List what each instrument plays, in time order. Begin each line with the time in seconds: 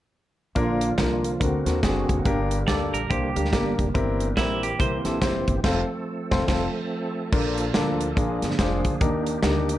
0.55 upright bass A#1, grand piano A#2 A#3 D4 F4 A#4, tonewheel organ D3 F3 A#3 F4, kick, closed hi-hat
0.81 closed hi-hat
0.97 upright bass C2, grand piano A#3 D4 F4 A#4, kick, snare, closed hi-hat
1.24 closed hi-hat
1.40 upright bass D2, grand piano D3 C4 D4 F#4 A#4, tonewheel organ D3 C4 F#4, kick, closed hi-hat
1.65 upright bass D#2, grand piano C4 D4 F#4 A#4, snare, closed hi-hat
1.83 upright bass F#1, grand piano C4 D4 F#4 G#4, kick, snare, closed hi-hat
2.09 upright bass F1, kick, closed hi-hat
2.25 upright bass G1, grand piano G2 A#3 D4 G4 A#4, tonewheel organ G3 G4, kick, closed hi-hat
2.51 closed hi-hat
2.67 upright bass D2, grand piano A#3 D4 G4 A4, clean electric guitar D5, kick, snare, closed hi-hat
2.94 upright bass A#1, clean electric guitar A#4, closed hi-hat
3.10 upright bass C2, grand piano A#3 D4 G4 C5, clean electric guitar G4, kick, closed hi-hat
3.36 upright bass D2, grand piano A#3 D4 G4 A#4, closed hi-hat
3.45 snare
3.52 upright bass G1, grand piano A#3 D4 G4 A#4, kick, snare, closed hi-hat
3.79 upright bass F1, kick, closed hi-hat
3.94 upright bass G1, grand piano G2 C4 E4 G4 A#4, tonewheel organ E3 C4, kick, closed hi-hat
4.20 closed hi-hat
4.37 upright bass A#1, grand piano C4 E4 G4 A#4, clean electric guitar E4, kick, snare, closed hi-hat
4.63 clean electric guitar G4, closed hi-hat
4.79 upright bass C2, grand piano C4 E4 G4 A#4, clean electric guitar C5, kick, closed hi-hat
5.05 upright bass A#1, grand piano C4 E4 G4 A4, snare, closed hi-hat
5.21 upright bass F1, grand piano C4 E4 G4 C5, kick, snare, closed hi-hat
5.48 upright bass G1, kick, closed hi-hat
5.63 upright bass F1, tonewheel organ F3 A3 A4, grand piano C4 F4 A4 C5, kick, snare, crash
6.31 upright bass F1, grand piano C4 F4 A4 C5, kick, snare
6.48 upright bass F1, grand piano C4 F4 A4, kick, snare, crash
7.32 upright bass A#1, grand piano A#2 D4 F4 A4 A#4, tonewheel organ F3 A#3 D4 A4, kick, crash
7.58 closed hi-hat
7.74 upright bass D2, grand piano D4 F4 A4 A#4, snare, closed hi-hat
8.01 closed hi-hat
8.16 upright bass A#1, grand piano A#2 D4 F4 G#4 A#4, tonewheel organ G#4, kick, closed hi-hat
8.42 upright bass G1, snare, closed hi-hat
8.51 snare
8.58 upright bass F1, grand piano D4 F4 G#4 C5, kick, snare, closed hi-hat
8.85 upright bass D2, kick, closed hi-hat
9.01 upright bass D#2, grand piano D#3 D4 D#4 G4 A#4, tonewheel organ D#4 G4, kick, closed hi-hat
9.27 closed hi-hat
9.43 upright bass D2, grand piano D4 D#4 G4 A#4, snare, closed hi-hat
9.69 closed hi-hat